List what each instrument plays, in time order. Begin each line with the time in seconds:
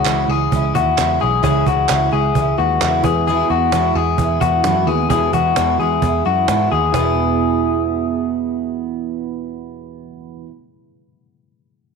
Already playing: reed electric piano E4 G#4 C#5, clean electric guitar F#4
0.05 picked electric bass C#2, twelve-string acoustic guitar C#3 E3 G#3 C#4 E4, cajon slap, clap
0.28 picked electric bass C#2, twelve-string acoustic guitar G#3 C#4 E4, clean electric guitar G#4, cajon slap
0.52 picked electric bass C#2, twelve-string acoustic guitar E3 G#3 C#4 E4, cajon bass
0.75 picked electric bass D#2, twelve-string acoustic guitar G#3 C#4 E4, clean electric guitar F#4, cajon bass
0.98 picked electric bass E2, twelve-string acoustic guitar C#3 E3 G#3 C#4 E4, cajon slap, clap
1.20 picked electric bass B1, twelve-string acoustic guitar G#3 C#4 E4, clean electric guitar G#4
1.43 picked electric bass C#2, twelve-string acoustic guitar C#3 E3 G#3 C#4 E4, reed electric piano E4 G#4 C#5, clean electric guitar G#4, cajon bass
1.65 picked electric bass C#2, twelve-string acoustic guitar G#3 C#4 E4, clean electric guitar F#4, cajon bass, cajon slap
1.88 picked electric bass C#2, twelve-string acoustic guitar C#3 E3 G#3 C#4 E4, cajon slap, clap
2.11 picked electric bass C#2, twelve-string acoustic guitar G#3 C#4 E4, clean electric guitar G#4, cajon slap
2.35 picked electric bass C#2, twelve-string acoustic guitar E3 G#3 C#4 E4, cajon bass
2.58 picked electric bass D#2, twelve-string acoustic guitar G#3 C#4 E4, reed electric piano E4 G#4 B4, clean electric guitar F#4, cajon slap
2.80 picked electric bass E2, twelve-string acoustic guitar C#3 E3 G#3 C#4 E4, cajon slap, clap
3.03 picked electric bass E2, twelve-string acoustic guitar G#3 B3 E4, reed electric piano E4 G#4 B4, clean electric guitar G#4, cajon bass
3.26 twelve-string acoustic guitar E2 B2 E3 G#3 B3 E4, clean electric guitar G#4, cajon slap
3.49 picked electric bass E2, twelve-string acoustic guitar G#3 B3 E4, clean electric guitar F#4, cajon slap
3.54 twelve-string acoustic guitar E3
3.72 picked electric bass E2, twelve-string acoustic guitar E2 B2 E3 G#3 B3 E4, cajon slap
3.95 picked electric bass E2, twelve-string acoustic guitar E3 G#3 B3 E4, clean electric guitar G#4, cajon slap
4.18 picked electric bass E2, twelve-string acoustic guitar E3 G#3 B3 E4, cajon bass
4.41 picked electric bass E2, twelve-string acoustic guitar E3 G#3 B3 E4, clean electric guitar F#4, cajon bass
4.64 twelve-string acoustic guitar E2 B2 E3 G#3 B3 E4, picked electric bass F#2, cajon slap
4.87 picked electric bass D#2, twelve-string acoustic guitar E3 G#3 B3 E4, reed electric piano E4 G#4 B4, clean electric guitar G#4
5.10 picked electric bass E2, twelve-string acoustic guitar E2 B2 E3 G#3 B3 E4, clean electric guitar G#4, cajon bass
5.33 picked electric bass E2, twelve-string acoustic guitar E3 G#3 B3 E4, clean electric guitar F#4, cajon bass
5.56 twelve-string acoustic guitar E2 B2 E3 G#3 B3 E4, picked electric bass E2, cajon slap
5.80 picked electric bass E2, twelve-string acoustic guitar E3 G#3 B3 E4, clean electric guitar G#4
6.02 picked electric bass E2, twelve-string acoustic guitar E3 G#3 B3 E4, cajon bass
6.25 picked electric bass F#2, twelve-string acoustic guitar E3 G#3 B3 E4, clean electric guitar F#4, cajon slap
6.48 twelve-string acoustic guitar E2 B2 E3 G#3 B3 E4, picked electric bass G#2, cajon slap
6.72 picked electric bass D#2, twelve-string acoustic guitar E3 G#3 B3 E4, clean electric guitar G#4
6.92 picked electric bass E1, twelve-string acoustic guitar E2 B2, reed electric piano E4 G#4, clean electric guitar G#4, cajon bass, cajon slap
6.96 twelve-string acoustic guitar E3 G#3 B3 E4, reed electric piano B4